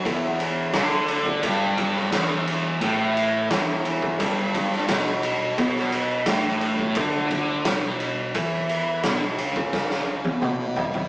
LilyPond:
<<
  \new Staff \with { instrumentName = "Distorted electric guitar" } { \clef bass \time 4/4 \key e \minor \tempo 4 = 87 e,4 d4 g,4 e,4 | a,4 e,4 g,4 b,4 | b,4 a,4 d4 b,4 | e4 b,8 cis4. b,4 | }
  \new Staff \with { instrumentName = "Fingered electric bass" } { \clef bass \time 4/4 \key e \minor e,,4 d,4 g,,4 e,,4 | a,,4 e,,4 g,,4 b,,4 | b,,4 a,,4 d,4 b,,4 | e,4 b,,8 cis,4. b,,4 | }
  \new DrumStaff \with { instrumentName = "Drums" } \drummode { \time 4/4 <bd cymr>8 cymr8 <cymr sn>8 cymr16 bd16 <bd cymr>8 <bd cymr>16 sn16 <cymr sn>8 cymr8 | <bd cymr>8 cymr8 <cymr sn>8 cymr16 bd16 <bd cymr>8 <bd cymr>16 sn16 <cymr sn>8 cymr8 | <bd cymr>16 sn16 cymr8 <cymr sn>8 cymr16 bd16 <bd cymr>8 <bd cymr>8 <cymr sn>8 cymr8 | <bd cymr>8 cymr8 <cymr sn>8 cymr16 bd16 <bd sn>16 sn8 tommh16 toml8 tomfh16 tomfh16 | }
>>